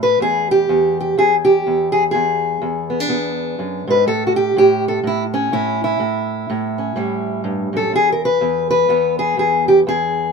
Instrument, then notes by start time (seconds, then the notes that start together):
steel-string acoustic guitar
Already playing: A2 C#4
0.03 B4
0.20 E2 G#4
0.51 G4
0.69 E2
1.00 G4
1.17 E2 G#4
1.45 G4
1.67 E2
1.92 G#4
2.11 E2 G#4
2.62 E2
2.90 B3
3.00 D4
3.09 E2 B3
3.59 F#2
3.87 G#2 B4
4.06 A2 A4
4.27 F#4
4.36 G4
4.57 A2 G4
4.88 A4
5.03 A2 E4
5.34 C#4
5.52 A2 E4
5.84 E4
6.00 A2
6.50 A2
6.78 C#4
6.96 A2 G3
7.44 G2
7.73 F#2 A4
7.92 E2 G#4
8.12 A#4
8.25 B4
8.41 E2
8.70 B4
8.89 E2 B3
9.19 G#4
9.37 E2 G#4
9.68 G4
9.87 E2 G#4